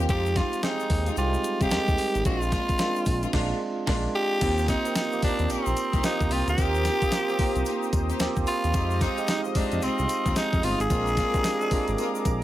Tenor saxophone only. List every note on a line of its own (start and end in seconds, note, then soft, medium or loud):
0.10 0.38 G4 loud
0.37 0.64 F4 loud
0.64 1.14 D#4 medium
1.18 1.64 F4 medium
1.62 1.71 G4 loud
1.72 2.22 G4 loud
2.26 3.84 F4 loud
4.15 4.65 G4 loud
4.69 4.94 D#4 loud
4.97 5.21 D#4 loud
5.24 5.53 D4 medium
5.51 6.04 C4 medium
6.05 6.34 D#4 loud
6.32 6.48 F4 medium
6.49 8.17 G4 loud
8.48 8.98 F4 loud
9.02 9.27 D#4 loud
9.29 9.41 D#4 loud
9.56 9.85 D4 medium
9.83 10.37 C4 loud
10.37 10.66 D#4 loud
10.64 10.80 F4 loud
10.81 12.44 G#4 loud